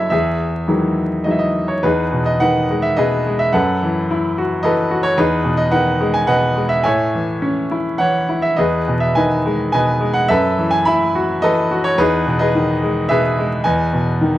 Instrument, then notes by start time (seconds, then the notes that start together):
grand piano
Already playing: F#2 F#3 A3 E4 A4 C#5 D#5 E5
0.10 E2 G#4 E5
0.68 D#3 E3 F#3 G#3
1.24 E3 F#3 G#3 D#4 D#5
1.31 E5
1.39 D#5
1.68 C#5
1.83 E2 D#4 G#4 B4
2.13 B2
2.26 D#5
2.40 D#3 B4 D#5 F#5
2.71 G#3
2.82 E5
2.97 B2 G#4 B4 D#5
3.27 G#3
3.39 E5
3.53 F#2 A4 B4 F#5
3.83 E3
4.11 E4
4.38 F#4
4.63 E3 A4 B4 D#5
4.91 F#4
5.03 C#5
5.17 E2 D#4 G#4 B4
5.45 B2
5.57 D#5
5.71 D#3 B4 D#5 F#5
6.01 G#3
6.14 G#5
6.27 B2 B4 D#5 F#5
6.56 G#3
6.69 E5
6.84 A2 C#5 E5 G#5
7.15 E3
7.42 C#4
7.71 E4
7.98 E3 C#5 F#5
8.29 E4
8.42 E5
8.56 E2 G#4 B4 D#5
8.88 B2
9.00 E5
9.15 D#3 B4 D#5 G#5
9.45 G#3
9.72 B2 B4 D#5 G#5
10.01 G#3
10.14 F#5
10.28 F#2 A4 B4 E5
10.58 E3
10.71 G#5
10.85 E4 E5 B5
11.15 F#4
11.42 E3 A4 B4 D#5
11.71 F#4
11.84 C#5
11.98 E2 D#4 G#4 B4
12.27 B2
12.39 G#4 B4 D#5
12.55 D#3
12.82 G#3
13.09 B2 G#4 B4 E5
13.39 G#3
13.64 E2 B4 D#5 G#5
13.93 B2
14.21 D#3